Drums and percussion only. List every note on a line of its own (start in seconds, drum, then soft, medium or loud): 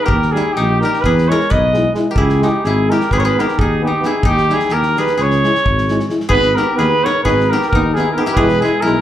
0.08 kick loud
0.22 snare soft
0.36 snare soft
0.56 snare soft
0.82 snare soft
0.93 snare soft
1.04 kick medium
1.04 snare soft
1.18 snare soft
1.30 snare soft
1.40 snare soft
1.51 kick medium
1.74 snare soft
1.95 snare soft
2.16 kick medium
2.29 snare soft
2.42 snare soft
2.64 snare soft
2.91 snare soft
3.00 snare soft
3.11 kick medium
3.11 snare soft
3.24 snare soft
3.39 snare soft
3.48 snare soft
3.59 kick medium
4.03 snare soft
4.23 kick loud
4.38 snare soft
4.50 snare soft
4.60 snare soft
4.69 snare soft
4.83 snare soft
4.96 snare soft
5.07 snare soft
5.17 snare soft
5.31 snare soft
5.44 snare soft
5.55 snare soft
5.66 kick medium
5.78 snare soft
5.88 snare soft
6.00 snare soft
6.10 snare soft
6.20 snare soft
6.30 kick medium
6.43 snare soft
6.57 snare soft
6.78 snare soft
7.06 snare soft
7.25 kick medium
7.25 snare soft
7.40 snare soft
7.52 snare soft
7.62 snare soft
7.73 kick medium
7.96 snare soft
8.27 snare soft
8.37 kick medium
8.49 snare soft
8.64 snare soft
8.85 snare soft